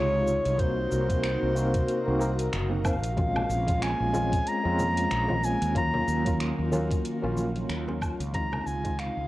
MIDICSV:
0, 0, Header, 1, 6, 480
1, 0, Start_track
1, 0, Key_signature, -5, "minor"
1, 0, Tempo, 645161
1, 444, Time_signature, 4, 2, 24, 8
1, 6902, End_track
2, 0, Start_track
2, 0, Title_t, "Soprano saxophone"
2, 0, Program_c, 0, 64
2, 0, Note_on_c, 0, 73, 105
2, 446, Note_on_c, 0, 72, 97
2, 457, Note_off_c, 0, 73, 0
2, 1885, Note_off_c, 0, 72, 0
2, 2122, Note_on_c, 0, 77, 90
2, 2847, Note_on_c, 0, 80, 98
2, 2858, Note_off_c, 0, 77, 0
2, 3331, Note_on_c, 0, 82, 109
2, 3342, Note_off_c, 0, 80, 0
2, 4052, Note_on_c, 0, 80, 97
2, 4063, Note_off_c, 0, 82, 0
2, 4288, Note_off_c, 0, 80, 0
2, 4295, Note_on_c, 0, 82, 100
2, 4740, Note_off_c, 0, 82, 0
2, 6208, Note_on_c, 0, 82, 125
2, 6446, Note_on_c, 0, 80, 108
2, 6457, Note_off_c, 0, 82, 0
2, 6690, Note_on_c, 0, 77, 99
2, 6702, Note_off_c, 0, 80, 0
2, 6902, Note_off_c, 0, 77, 0
2, 6902, End_track
3, 0, Start_track
3, 0, Title_t, "Tine electric piano"
3, 0, Program_c, 1, 4
3, 91, Note_on_c, 1, 56, 68
3, 96, Note_on_c, 1, 48, 64
3, 103, Note_on_c, 1, 63, 66
3, 108, Note_on_c, 1, 65, 76
3, 414, Note_off_c, 1, 56, 0
3, 417, Note_off_c, 1, 48, 0
3, 420, Note_off_c, 1, 63, 0
3, 423, Note_off_c, 1, 65, 0
3, 433, Note_on_c, 1, 58, 76
3, 437, Note_on_c, 1, 60, 67
3, 443, Note_on_c, 1, 63, 76
3, 448, Note_on_c, 1, 66, 84
3, 783, Note_off_c, 1, 58, 0
3, 785, Note_off_c, 1, 60, 0
3, 788, Note_off_c, 1, 63, 0
3, 790, Note_off_c, 1, 66, 0
3, 811, Note_on_c, 1, 58, 74
3, 818, Note_on_c, 1, 60, 70
3, 823, Note_on_c, 1, 63, 72
3, 828, Note_on_c, 1, 66, 88
3, 1134, Note_off_c, 1, 58, 0
3, 1138, Note_off_c, 1, 60, 0
3, 1140, Note_off_c, 1, 63, 0
3, 1142, Note_off_c, 1, 66, 0
3, 1152, Note_on_c, 1, 58, 89
3, 1157, Note_on_c, 1, 60, 80
3, 1164, Note_on_c, 1, 63, 84
3, 1169, Note_on_c, 1, 66, 99
3, 1503, Note_off_c, 1, 58, 0
3, 1505, Note_off_c, 1, 60, 0
3, 1509, Note_off_c, 1, 63, 0
3, 1511, Note_off_c, 1, 66, 0
3, 1533, Note_on_c, 1, 58, 97
3, 1539, Note_on_c, 1, 60, 87
3, 1543, Note_on_c, 1, 63, 84
3, 1548, Note_on_c, 1, 66, 105
3, 1619, Note_off_c, 1, 58, 0
3, 1622, Note_off_c, 1, 60, 0
3, 1624, Note_off_c, 1, 63, 0
3, 1627, Note_off_c, 1, 66, 0
3, 1630, Note_on_c, 1, 58, 94
3, 1635, Note_on_c, 1, 60, 84
3, 1642, Note_on_c, 1, 63, 83
3, 1647, Note_on_c, 1, 70, 103
3, 1710, Note_off_c, 1, 58, 0
3, 1712, Note_off_c, 1, 60, 0
3, 1716, Note_off_c, 1, 63, 0
3, 1718, Note_off_c, 1, 70, 0
3, 2005, Note_on_c, 1, 58, 87
3, 2010, Note_on_c, 1, 60, 75
3, 2016, Note_on_c, 1, 63, 70
3, 2022, Note_on_c, 1, 66, 88
3, 2068, Note_off_c, 1, 58, 0
3, 2070, Note_off_c, 1, 60, 0
3, 2073, Note_off_c, 1, 63, 0
3, 2076, Note_off_c, 1, 66, 0
3, 2115, Note_on_c, 1, 58, 81
3, 2121, Note_on_c, 1, 60, 73
3, 2124, Note_on_c, 1, 63, 70
3, 2131, Note_on_c, 1, 72, 84
3, 2192, Note_off_c, 1, 58, 0
3, 2195, Note_off_c, 1, 60, 0
3, 2197, Note_off_c, 1, 63, 0
3, 2200, Note_off_c, 1, 72, 0
3, 2353, Note_on_c, 1, 56, 83
3, 2357, Note_on_c, 1, 60, 73
3, 2362, Note_on_c, 1, 61, 74
3, 2367, Note_on_c, 1, 65, 86
3, 2703, Note_off_c, 1, 56, 0
3, 2705, Note_off_c, 1, 60, 0
3, 2707, Note_off_c, 1, 61, 0
3, 2710, Note_off_c, 1, 65, 0
3, 2728, Note_on_c, 1, 56, 76
3, 2736, Note_on_c, 1, 60, 69
3, 2740, Note_on_c, 1, 61, 66
3, 2745, Note_on_c, 1, 65, 89
3, 3053, Note_off_c, 1, 56, 0
3, 3057, Note_off_c, 1, 60, 0
3, 3059, Note_off_c, 1, 61, 0
3, 3061, Note_off_c, 1, 65, 0
3, 3073, Note_on_c, 1, 56, 91
3, 3078, Note_on_c, 1, 60, 84
3, 3084, Note_on_c, 1, 61, 90
3, 3087, Note_on_c, 1, 65, 105
3, 3423, Note_off_c, 1, 56, 0
3, 3425, Note_off_c, 1, 60, 0
3, 3429, Note_off_c, 1, 61, 0
3, 3430, Note_off_c, 1, 65, 0
3, 3450, Note_on_c, 1, 56, 95
3, 3455, Note_on_c, 1, 60, 86
3, 3459, Note_on_c, 1, 61, 86
3, 3465, Note_on_c, 1, 65, 105
3, 3903, Note_off_c, 1, 56, 0
3, 3905, Note_off_c, 1, 60, 0
3, 3907, Note_off_c, 1, 61, 0
3, 3910, Note_off_c, 1, 65, 0
3, 3927, Note_on_c, 1, 56, 67
3, 3931, Note_on_c, 1, 60, 66
3, 3937, Note_on_c, 1, 61, 68
3, 3941, Note_on_c, 1, 65, 78
3, 4252, Note_off_c, 1, 56, 0
3, 4254, Note_off_c, 1, 60, 0
3, 4257, Note_off_c, 1, 61, 0
3, 4259, Note_off_c, 1, 65, 0
3, 4270, Note_on_c, 1, 54, 77
3, 4277, Note_on_c, 1, 58, 71
3, 4281, Note_on_c, 1, 61, 76
3, 4288, Note_on_c, 1, 65, 92
3, 4621, Note_off_c, 1, 54, 0
3, 4625, Note_off_c, 1, 58, 0
3, 4627, Note_off_c, 1, 61, 0
3, 4630, Note_off_c, 1, 65, 0
3, 4650, Note_on_c, 1, 54, 80
3, 4656, Note_on_c, 1, 58, 74
3, 4661, Note_on_c, 1, 61, 75
3, 4666, Note_on_c, 1, 65, 92
3, 4974, Note_off_c, 1, 54, 0
3, 4977, Note_off_c, 1, 58, 0
3, 4979, Note_off_c, 1, 61, 0
3, 4982, Note_off_c, 1, 65, 0
3, 4994, Note_on_c, 1, 54, 90
3, 4998, Note_on_c, 1, 58, 87
3, 5004, Note_on_c, 1, 61, 82
3, 5007, Note_on_c, 1, 65, 102
3, 5343, Note_off_c, 1, 54, 0
3, 5345, Note_off_c, 1, 58, 0
3, 5349, Note_off_c, 1, 61, 0
3, 5350, Note_off_c, 1, 65, 0
3, 5373, Note_on_c, 1, 54, 98
3, 5378, Note_on_c, 1, 58, 84
3, 5383, Note_on_c, 1, 61, 94
3, 5389, Note_on_c, 1, 65, 107
3, 5824, Note_off_c, 1, 54, 0
3, 5827, Note_off_c, 1, 58, 0
3, 5829, Note_off_c, 1, 61, 0
3, 5832, Note_off_c, 1, 65, 0
3, 5855, Note_on_c, 1, 54, 74
3, 5859, Note_on_c, 1, 58, 66
3, 5865, Note_on_c, 1, 61, 66
3, 5869, Note_on_c, 1, 65, 82
3, 6176, Note_off_c, 1, 54, 0
3, 6178, Note_off_c, 1, 58, 0
3, 6181, Note_off_c, 1, 61, 0
3, 6183, Note_off_c, 1, 65, 0
3, 6202, Note_on_c, 1, 56, 81
3, 6206, Note_on_c, 1, 60, 73
3, 6211, Note_on_c, 1, 63, 75
3, 6217, Note_on_c, 1, 65, 88
3, 6547, Note_off_c, 1, 56, 0
3, 6550, Note_off_c, 1, 60, 0
3, 6552, Note_off_c, 1, 63, 0
3, 6555, Note_off_c, 1, 65, 0
3, 6578, Note_on_c, 1, 56, 77
3, 6583, Note_on_c, 1, 60, 75
3, 6589, Note_on_c, 1, 63, 78
3, 6593, Note_on_c, 1, 65, 87
3, 6898, Note_off_c, 1, 56, 0
3, 6900, Note_off_c, 1, 60, 0
3, 6902, Note_off_c, 1, 63, 0
3, 6902, Note_off_c, 1, 65, 0
3, 6902, End_track
4, 0, Start_track
4, 0, Title_t, "Analog synth pad"
4, 0, Program_c, 2, 89
4, 0, Note_on_c, 2, 48, 82
4, 0, Note_on_c, 2, 56, 79
4, 0, Note_on_c, 2, 63, 79
4, 0, Note_on_c, 2, 65, 91
4, 427, Note_off_c, 2, 48, 0
4, 427, Note_off_c, 2, 56, 0
4, 428, Note_off_c, 2, 65, 0
4, 445, Note_on_c, 2, 70, 87
4, 447, Note_on_c, 2, 48, 77
4, 448, Note_on_c, 2, 66, 76
4, 2338, Note_off_c, 2, 63, 0
4, 2345, Note_off_c, 2, 70, 0
4, 2346, Note_off_c, 2, 48, 0
4, 2347, Note_off_c, 2, 66, 0
4, 2363, Note_on_c, 2, 56, 80
4, 2364, Note_on_c, 2, 58, 70
4, 4264, Note_off_c, 2, 56, 0
4, 4280, Note_on_c, 2, 51, 84
4, 4283, Note_on_c, 2, 54, 89
4, 4285, Note_on_c, 2, 65, 71
4, 6174, Note_off_c, 2, 58, 0
4, 6183, Note_off_c, 2, 51, 0
4, 6184, Note_off_c, 2, 54, 0
4, 6203, Note_on_c, 2, 63, 75
4, 6205, Note_on_c, 2, 48, 81
4, 6205, Note_on_c, 2, 56, 77
4, 6902, Note_off_c, 2, 48, 0
4, 6902, Note_off_c, 2, 56, 0
4, 6902, Note_off_c, 2, 63, 0
4, 6902, Note_off_c, 2, 65, 0
4, 6902, End_track
5, 0, Start_track
5, 0, Title_t, "Fretless electric bass"
5, 0, Program_c, 3, 35
5, 0, Note_on_c, 3, 37, 101
5, 284, Note_off_c, 3, 37, 0
5, 341, Note_on_c, 3, 36, 105
5, 641, Note_off_c, 3, 36, 0
5, 684, Note_on_c, 3, 36, 90
5, 1003, Note_off_c, 3, 36, 0
5, 1061, Note_on_c, 3, 36, 87
5, 1360, Note_off_c, 3, 36, 0
5, 1544, Note_on_c, 3, 36, 80
5, 1842, Note_off_c, 3, 36, 0
5, 1884, Note_on_c, 3, 30, 89
5, 2258, Note_off_c, 3, 30, 0
5, 2258, Note_on_c, 3, 34, 94
5, 2559, Note_off_c, 3, 34, 0
5, 2601, Note_on_c, 3, 34, 93
5, 2922, Note_off_c, 3, 34, 0
5, 2979, Note_on_c, 3, 34, 85
5, 3279, Note_off_c, 3, 34, 0
5, 3461, Note_on_c, 3, 41, 103
5, 3761, Note_off_c, 3, 41, 0
5, 3806, Note_on_c, 3, 34, 105
5, 4124, Note_off_c, 3, 34, 0
5, 4180, Note_on_c, 3, 39, 102
5, 4480, Note_off_c, 3, 39, 0
5, 4521, Note_on_c, 3, 39, 99
5, 4842, Note_off_c, 3, 39, 0
5, 4902, Note_on_c, 3, 39, 89
5, 5201, Note_off_c, 3, 39, 0
5, 5383, Note_on_c, 3, 34, 104
5, 5682, Note_off_c, 3, 34, 0
5, 5721, Note_on_c, 3, 39, 96
5, 6042, Note_off_c, 3, 39, 0
5, 6100, Note_on_c, 3, 37, 104
5, 6400, Note_off_c, 3, 37, 0
5, 6445, Note_on_c, 3, 37, 91
5, 6764, Note_off_c, 3, 37, 0
5, 6823, Note_on_c, 3, 37, 91
5, 6902, Note_off_c, 3, 37, 0
5, 6902, End_track
6, 0, Start_track
6, 0, Title_t, "Drums"
6, 205, Note_on_c, 9, 82, 81
6, 279, Note_off_c, 9, 82, 0
6, 339, Note_on_c, 9, 42, 54
6, 342, Note_on_c, 9, 82, 46
6, 413, Note_off_c, 9, 42, 0
6, 416, Note_off_c, 9, 82, 0
6, 439, Note_on_c, 9, 36, 122
6, 440, Note_on_c, 9, 42, 45
6, 444, Note_on_c, 9, 82, 38
6, 514, Note_off_c, 9, 36, 0
6, 515, Note_off_c, 9, 42, 0
6, 518, Note_off_c, 9, 82, 0
6, 683, Note_on_c, 9, 82, 83
6, 757, Note_off_c, 9, 82, 0
6, 815, Note_on_c, 9, 36, 109
6, 818, Note_on_c, 9, 42, 53
6, 821, Note_on_c, 9, 82, 50
6, 890, Note_off_c, 9, 36, 0
6, 892, Note_off_c, 9, 42, 0
6, 895, Note_off_c, 9, 82, 0
6, 919, Note_on_c, 9, 26, 94
6, 919, Note_on_c, 9, 42, 39
6, 922, Note_on_c, 9, 82, 34
6, 993, Note_off_c, 9, 26, 0
6, 993, Note_off_c, 9, 42, 0
6, 997, Note_off_c, 9, 82, 0
6, 1165, Note_on_c, 9, 82, 80
6, 1239, Note_off_c, 9, 82, 0
6, 1295, Note_on_c, 9, 42, 49
6, 1296, Note_on_c, 9, 36, 114
6, 1299, Note_on_c, 9, 82, 44
6, 1369, Note_off_c, 9, 42, 0
6, 1370, Note_off_c, 9, 36, 0
6, 1373, Note_off_c, 9, 82, 0
6, 1401, Note_on_c, 9, 42, 42
6, 1404, Note_on_c, 9, 82, 33
6, 1475, Note_off_c, 9, 42, 0
6, 1479, Note_off_c, 9, 82, 0
6, 1644, Note_on_c, 9, 82, 83
6, 1718, Note_off_c, 9, 82, 0
6, 1777, Note_on_c, 9, 42, 50
6, 1781, Note_on_c, 9, 82, 44
6, 1852, Note_off_c, 9, 42, 0
6, 1855, Note_off_c, 9, 82, 0
6, 1881, Note_on_c, 9, 26, 100
6, 1881, Note_on_c, 9, 42, 44
6, 1884, Note_on_c, 9, 82, 35
6, 1955, Note_off_c, 9, 26, 0
6, 1955, Note_off_c, 9, 42, 0
6, 1959, Note_off_c, 9, 82, 0
6, 2118, Note_on_c, 9, 77, 79
6, 2119, Note_on_c, 9, 36, 110
6, 2121, Note_on_c, 9, 82, 86
6, 2192, Note_off_c, 9, 77, 0
6, 2193, Note_off_c, 9, 36, 0
6, 2196, Note_off_c, 9, 82, 0
6, 2257, Note_on_c, 9, 42, 55
6, 2261, Note_on_c, 9, 82, 45
6, 2332, Note_off_c, 9, 42, 0
6, 2335, Note_off_c, 9, 82, 0
6, 2359, Note_on_c, 9, 36, 117
6, 2362, Note_on_c, 9, 42, 46
6, 2363, Note_on_c, 9, 63, 90
6, 2365, Note_on_c, 9, 82, 35
6, 2433, Note_off_c, 9, 36, 0
6, 2436, Note_off_c, 9, 42, 0
6, 2438, Note_off_c, 9, 63, 0
6, 2440, Note_off_c, 9, 82, 0
6, 2496, Note_on_c, 9, 64, 79
6, 2500, Note_on_c, 9, 77, 57
6, 2570, Note_off_c, 9, 64, 0
6, 2574, Note_off_c, 9, 77, 0
6, 2606, Note_on_c, 9, 82, 78
6, 2680, Note_off_c, 9, 82, 0
6, 2736, Note_on_c, 9, 36, 102
6, 2739, Note_on_c, 9, 42, 52
6, 2740, Note_on_c, 9, 63, 63
6, 2742, Note_on_c, 9, 82, 45
6, 2810, Note_off_c, 9, 36, 0
6, 2813, Note_off_c, 9, 42, 0
6, 2814, Note_off_c, 9, 63, 0
6, 2816, Note_off_c, 9, 82, 0
6, 2843, Note_on_c, 9, 26, 89
6, 2843, Note_on_c, 9, 42, 41
6, 2847, Note_on_c, 9, 82, 32
6, 2918, Note_off_c, 9, 26, 0
6, 2918, Note_off_c, 9, 42, 0
6, 2921, Note_off_c, 9, 82, 0
6, 3078, Note_on_c, 9, 62, 54
6, 3081, Note_on_c, 9, 63, 98
6, 3083, Note_on_c, 9, 82, 76
6, 3153, Note_off_c, 9, 62, 0
6, 3155, Note_off_c, 9, 63, 0
6, 3158, Note_off_c, 9, 82, 0
6, 3216, Note_on_c, 9, 36, 104
6, 3221, Note_on_c, 9, 42, 51
6, 3224, Note_on_c, 9, 82, 45
6, 3290, Note_off_c, 9, 36, 0
6, 3295, Note_off_c, 9, 42, 0
6, 3299, Note_off_c, 9, 82, 0
6, 3324, Note_on_c, 9, 42, 41
6, 3328, Note_on_c, 9, 82, 33
6, 3399, Note_off_c, 9, 42, 0
6, 3402, Note_off_c, 9, 82, 0
6, 3565, Note_on_c, 9, 63, 56
6, 3566, Note_on_c, 9, 82, 81
6, 3569, Note_on_c, 9, 64, 81
6, 3639, Note_off_c, 9, 63, 0
6, 3640, Note_off_c, 9, 82, 0
6, 3643, Note_off_c, 9, 64, 0
6, 3700, Note_on_c, 9, 42, 55
6, 3703, Note_on_c, 9, 82, 41
6, 3774, Note_off_c, 9, 42, 0
6, 3778, Note_off_c, 9, 82, 0
6, 3800, Note_on_c, 9, 62, 56
6, 3802, Note_on_c, 9, 26, 93
6, 3802, Note_on_c, 9, 42, 41
6, 3805, Note_on_c, 9, 82, 33
6, 3874, Note_off_c, 9, 62, 0
6, 3876, Note_off_c, 9, 26, 0
6, 3876, Note_off_c, 9, 42, 0
6, 3880, Note_off_c, 9, 82, 0
6, 3933, Note_on_c, 9, 64, 84
6, 3944, Note_on_c, 9, 63, 90
6, 4007, Note_off_c, 9, 64, 0
6, 4018, Note_off_c, 9, 63, 0
6, 4046, Note_on_c, 9, 82, 80
6, 4121, Note_off_c, 9, 82, 0
6, 4181, Note_on_c, 9, 42, 55
6, 4184, Note_on_c, 9, 82, 46
6, 4255, Note_off_c, 9, 42, 0
6, 4258, Note_off_c, 9, 82, 0
6, 4280, Note_on_c, 9, 36, 104
6, 4284, Note_on_c, 9, 42, 46
6, 4287, Note_on_c, 9, 82, 35
6, 4289, Note_on_c, 9, 63, 87
6, 4354, Note_off_c, 9, 36, 0
6, 4358, Note_off_c, 9, 42, 0
6, 4362, Note_off_c, 9, 82, 0
6, 4363, Note_off_c, 9, 63, 0
6, 4418, Note_on_c, 9, 64, 90
6, 4492, Note_off_c, 9, 64, 0
6, 4525, Note_on_c, 9, 82, 81
6, 4599, Note_off_c, 9, 82, 0
6, 4657, Note_on_c, 9, 36, 96
6, 4659, Note_on_c, 9, 42, 55
6, 4659, Note_on_c, 9, 63, 58
6, 4662, Note_on_c, 9, 82, 44
6, 4732, Note_off_c, 9, 36, 0
6, 4733, Note_off_c, 9, 42, 0
6, 4733, Note_off_c, 9, 63, 0
6, 4736, Note_off_c, 9, 82, 0
6, 4764, Note_on_c, 9, 26, 90
6, 4764, Note_on_c, 9, 42, 40
6, 4767, Note_on_c, 9, 82, 29
6, 4838, Note_off_c, 9, 26, 0
6, 4838, Note_off_c, 9, 42, 0
6, 4842, Note_off_c, 9, 82, 0
6, 5004, Note_on_c, 9, 82, 76
6, 5005, Note_on_c, 9, 63, 94
6, 5009, Note_on_c, 9, 62, 61
6, 5078, Note_off_c, 9, 82, 0
6, 5079, Note_off_c, 9, 63, 0
6, 5083, Note_off_c, 9, 62, 0
6, 5138, Note_on_c, 9, 36, 109
6, 5143, Note_on_c, 9, 42, 53
6, 5146, Note_on_c, 9, 82, 43
6, 5213, Note_off_c, 9, 36, 0
6, 5217, Note_off_c, 9, 42, 0
6, 5221, Note_off_c, 9, 82, 0
6, 5245, Note_on_c, 9, 42, 45
6, 5248, Note_on_c, 9, 82, 33
6, 5319, Note_off_c, 9, 42, 0
6, 5323, Note_off_c, 9, 82, 0
6, 5480, Note_on_c, 9, 63, 59
6, 5486, Note_on_c, 9, 82, 74
6, 5555, Note_off_c, 9, 63, 0
6, 5561, Note_off_c, 9, 82, 0
6, 5622, Note_on_c, 9, 42, 54
6, 5625, Note_on_c, 9, 82, 42
6, 5697, Note_off_c, 9, 42, 0
6, 5700, Note_off_c, 9, 82, 0
6, 5725, Note_on_c, 9, 26, 90
6, 5725, Note_on_c, 9, 42, 42
6, 5728, Note_on_c, 9, 82, 30
6, 5799, Note_off_c, 9, 26, 0
6, 5799, Note_off_c, 9, 42, 0
6, 5802, Note_off_c, 9, 82, 0
6, 5862, Note_on_c, 9, 63, 86
6, 5865, Note_on_c, 9, 62, 68
6, 5937, Note_off_c, 9, 63, 0
6, 5940, Note_off_c, 9, 62, 0
6, 5963, Note_on_c, 9, 36, 100
6, 5966, Note_on_c, 9, 77, 82
6, 5969, Note_on_c, 9, 82, 74
6, 6037, Note_off_c, 9, 36, 0
6, 6040, Note_off_c, 9, 77, 0
6, 6044, Note_off_c, 9, 82, 0
6, 6104, Note_on_c, 9, 42, 59
6, 6107, Note_on_c, 9, 82, 44
6, 6178, Note_off_c, 9, 42, 0
6, 6182, Note_off_c, 9, 82, 0
6, 6203, Note_on_c, 9, 36, 109
6, 6206, Note_on_c, 9, 42, 51
6, 6209, Note_on_c, 9, 63, 90
6, 6209, Note_on_c, 9, 82, 35
6, 6278, Note_off_c, 9, 36, 0
6, 6280, Note_off_c, 9, 42, 0
6, 6283, Note_off_c, 9, 63, 0
6, 6283, Note_off_c, 9, 82, 0
6, 6340, Note_on_c, 9, 64, 94
6, 6345, Note_on_c, 9, 77, 63
6, 6414, Note_off_c, 9, 64, 0
6, 6420, Note_off_c, 9, 77, 0
6, 6450, Note_on_c, 9, 82, 76
6, 6525, Note_off_c, 9, 82, 0
6, 6581, Note_on_c, 9, 36, 94
6, 6582, Note_on_c, 9, 63, 59
6, 6583, Note_on_c, 9, 42, 61
6, 6586, Note_on_c, 9, 82, 46
6, 6655, Note_off_c, 9, 36, 0
6, 6657, Note_off_c, 9, 42, 0
6, 6657, Note_off_c, 9, 63, 0
6, 6661, Note_off_c, 9, 82, 0
6, 6687, Note_on_c, 9, 26, 90
6, 6687, Note_on_c, 9, 42, 45
6, 6691, Note_on_c, 9, 82, 28
6, 6762, Note_off_c, 9, 26, 0
6, 6762, Note_off_c, 9, 42, 0
6, 6765, Note_off_c, 9, 82, 0
6, 6902, End_track
0, 0, End_of_file